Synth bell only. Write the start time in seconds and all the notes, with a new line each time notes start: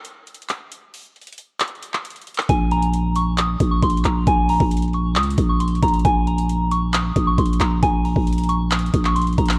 2.49 G#5
2.72 A#5
3.16 C#6
3.38 D#6
3.71 C#6
3.83 C6
4.05 A#5
4.27 G#5
4.50 A#5
4.94 C#6
5.17 D#6
5.49 C#6
5.60 C6
5.83 A#5
6.05 G#5
6.27 A#5
6.71 C#6
6.94 D#6
7.27 C#6
7.38 C6
7.60 A#5
7.83 G#5
8.05 A#5
8.49 C#6
8.72 D#6
9.05 C#6
9.16 C6
9.38 A#5